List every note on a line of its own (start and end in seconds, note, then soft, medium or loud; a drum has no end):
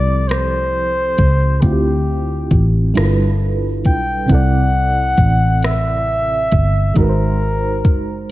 0.00 1.15 C2 medium
0.00 1.57 F3 medium
0.00 1.58 C4 medium
0.00 1.59 E4 medium
0.00 1.60 G4 medium
0.00 1.65 A4 medium
0.00 0.29 D5 loud
0.28 1.63 C5 loud
0.28 cross-stick medium
0.28 closed hi-hat medium
1.18 1.60 C#2 medium
1.18 kick medium
1.18 closed hi-hat medium
1.62 2.48 D2 medium
1.62 2.96 D3 medium
1.62 2.96 C4 medium
1.62 2.95 E4 medium
1.62 2.96 F4 medium
1.62 2.96 G4 medium
1.62 kick loud
1.62 closed hi-hat medium
1.66 1.71 F#4 medium
1.73 3.01 G4 medium
2.51 2.92 A1 medium
2.51 kick medium
2.51 closed hi-hat medium
2.94 3.86 G1 medium
2.94 4.29 G3 medium
2.94 4.29 D4 medium
2.94 4.29 E4 medium
2.94 4.30 F4 medium
2.94 4.30 A4 medium
2.94 cross-stick loud
2.94 closed hi-hat medium
2.99 3.04 A#4 medium
3.05 4.34 B4 medium
3.85 4.26 B1 medium
3.85 4.33 G5 loud
3.85 kick medium
3.85 closed hi-hat medium
4.26 6.91 C3 medium
4.26 6.92 C4 medium
4.26 kick medium
4.26 closed hi-hat medium
4.30 5.15 C2 medium
4.30 6.93 E4 medium
4.30 6.94 A4 medium
4.30 5.66 F#5 loud
4.35 6.95 D5 medium
5.17 6.48 A1 medium
5.17 kick loud
5.17 closed hi-hat medium
5.62 6.99 E5 loud
5.62 cross-stick loud
5.62 closed hi-hat medium
6.52 6.93 G1 medium
6.52 kick medium
6.52 closed hi-hat medium
6.94 7.85 G#1 medium
6.94 8.32 G#3 medium
6.94 8.32 D#4 medium
6.94 8.30 A#4 medium
6.94 kick loud
6.94 closed hi-hat medium
6.98 8.32 F#4 medium
6.98 8.32 A#4 medium
7.03 7.06 B4 medium
7.09 8.32 C5 medium
7.85 8.26 F#1 medium
7.85 kick medium
7.85 closed hi-hat medium